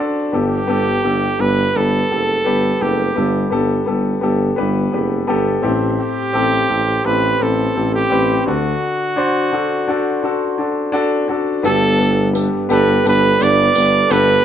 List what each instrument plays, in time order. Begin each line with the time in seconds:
Already playing: grand piano D4 F#4 C5
0.00 grand piano A4
0.32 tuba G1, grand piano G2 B3 G4 A4, trumpet G4
0.67 tuba G1, grand piano B3 G4 A4
1.03 tuba G1, grand piano B3 G4 A4
1.39 tuba G1, grand piano B3 G4 A4, trumpet B4
1.74 tuba G1, grand piano B3 G4 B4, trumpet A4
2.10 tuba F#1, grand piano B3 G4 A4
2.44 tuba G1, grand piano B3 G4 B4
2.80 tuba F#1, grand piano B3 G4 A4, trumpet G4
3.16 tuba G1, grand piano G2 B3 G4 A4
3.50 tuba G1, grand piano B3 G4 A4
3.86 tuba G1, grand piano B3 G4 A4
4.21 tuba G1, grand piano B3 G4 A4
4.56 tuba G1, grand piano B3 G4 B4
4.92 tuba F#1, grand piano B3 G4 B4
5.27 tuba G1, grand piano B3 G4 A4 A5
5.62 tuba A1, grand piano A2 C4 G4 A4 E5
6.00 trumpet G4
6.33 tuba A1, grand piano C4 G4 A4
6.68 tuba A1, grand piano C4 G4 A4
7.04 tuba A1, grand piano C4 G4 A4, trumpet B4
7.39 tuba A1, grand piano C4 G4 B4, trumpet A4
7.75 tuba A1, grand piano C4 G4 A4
7.94 trumpet G4
8.10 tuba A1, grand piano C4 G4 B4
8.46 tuba D2, grand piano D3 D4 F#4 A4, trumpet F#4
9.16 grand piano D4 F#4 C5
9.52 grand piano D4 F#4 A4
9.88 grand piano D4 F#4 A4
10.23 grand piano D4 F#4 A4
10.58 grand piano D4 F#4 A4
10.92 grand piano D4 F#4 A4
11.28 grand piano D4 F#4 A4
11.63 tuba G1, grand piano G2 B3 G4 A4, analog synth pad G3 D4 A4 B4, trumpet A4, tambourine
11.98 grand piano B3 G4 A4, tambourine
12.33 grand piano B3 G4 A4, tambourine
12.69 tuba G1, grand piano B3 G4 A4, trumpet B4, tambourine
13.04 tuba G1, grand piano B3 G4 A4, trumpet B4, tambourine
13.39 tuba G1, grand piano B3 G4 B4, trumpet D5, tambourine
13.74 tuba G1, grand piano B3 G4 B4, tambourine
14.10 tuba G1, grand piano B3 G4 A4, trumpet B4, tambourine